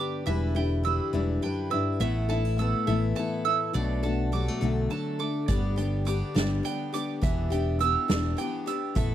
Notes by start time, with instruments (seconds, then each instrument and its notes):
Already playing: steel-string acoustic guitar G2 D3 B3 D4 G4 B4, mandolin D5 G5 D6
0.00 steel-string acoustic guitar D4
0.26 fingered electric bass E1, steel-string acoustic guitar E2 E3 G3 D4 E4 B4, mandolin E5
0.55 steel-string acoustic guitar D4 E4 G4 B4, mandolin G5
0.83 steel-string acoustic guitar G3 D4 E4 B4, mandolin E6
1.13 fingered electric bass E1, steel-string acoustic guitar E2 E3 G3 D4 E4 B4
1.42 steel-string acoustic guitar F#2 G3 D4 E4 B4, mandolin G5
1.70 steel-string acoustic guitar G2 D4 E4 B4, mandolin E6
2.00 fingered electric bass A1, steel-string acoustic guitar A2 A3 B3 E4 A4, mandolin E5
2.29 steel-string acoustic guitar B3 D4 E4 A4, mandolin A5
2.45 steel-string acoustic guitar E4
2.58 steel-string acoustic guitar A3 B3 E4 A4, mandolin E6
2.87 fingered electric bass A1, steel-string acoustic guitar E3 A3 B3 E4 A4, mandolin E5
3.15 steel-string acoustic guitar A3 B3 E4 A4, mandolin A5
3.45 steel-string acoustic guitar B3 E4 A4, mandolin E6
3.73 fingered electric bass B1, steel-string acoustic guitar B2 F#3 A3 D4 A4, mandolin D5
4.03 steel-string acoustic guitar A3 D4 F#4 A4, mandolin A5
4.32 steel-string acoustic guitar F#3 G3 A3 D4 A4, mandolin D6
4.48 steel-string acoustic guitar A3
4.61 fingered electric bass B1, steel-string acoustic guitar B2 D3 F#3 A3 D4 A4
4.90 steel-string acoustic guitar F#3 A3 D4 A4, mandolin A5
5.19 steel-string acoustic guitar A3 D4 A4, mandolin D6
5.48 fingered electric bass G1, steel-string acoustic guitar G2 D3 G3 B3 D4 G4, mandolin D5, kick, closed hi-hat
5.76 steel-string acoustic guitar G3 B3 D4 G4, mandolin G5, closed hi-hat
6.05 steel-string acoustic guitar G3 B3 D4 G4, mandolin D6, closed hi-hat
6.34 fingered electric bass G1, steel-string acoustic guitar G2 D3 G3 B3 D4 G4, mandolin D5, snare, closed hi-hat
6.63 steel-string acoustic guitar G3 B3 D4 G4, mandolin G5, closed hi-hat
6.92 steel-string acoustic guitar G3 B3 D4 G4, mandolin D6, closed hi-hat
7.21 fingered electric bass E1, steel-string acoustic guitar E3 B3 D4 G4, mandolin E5, kick, closed hi-hat
7.50 steel-string acoustic guitar B3 D4 G4, mandolin G5, closed hi-hat
7.79 steel-string acoustic guitar E3 B3 D4 G4, mandolin E6, closed hi-hat
8.08 fingered electric bass E1, steel-string acoustic guitar E3 B3 D4 G4, snare, closed hi-hat
8.37 steel-string acoustic guitar E3 B3 D4 G4, mandolin G5, closed hi-hat
8.66 steel-string acoustic guitar B3 D4 G4, mandolin E6, closed hi-hat
8.95 fingered electric bass A1, steel-string acoustic guitar A3 B3 E4 A4, mandolin E5, kick, closed hi-hat